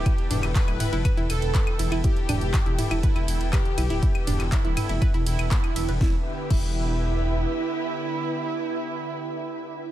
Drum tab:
CC |----------------|----------------|----------------|----x-----------|
RD |--x---x---x---x-|--x---x---x---x-|--x---x---x---x-|----------------|
HH |xxoxxxoxxxoxxxox|xxoxxxoxxxoxxxox|xxoxxxoxxxoxxxox|----------------|
CL |x--x-x--x-x--x-x|--x-x--x-x--x-x-|-x-x--x-x--x-x--|----------------|
CP |---xx-------x---|----x-------x---|---xx-------x---|----------------|
SD |----------------|----------------|----------------|o---------------|
T2 |--o---o---------|--o---o---------|--o---o---------|----------------|
BD |o---o---o---o---|o---o---o---o---|o---o---o---o---|o---o-----------|

CC |----------------|
RD |----------------|
HH |----------------|
CL |----------------|
CP |----------------|
SD |----------------|
T2 |----------------|
BD |----------------|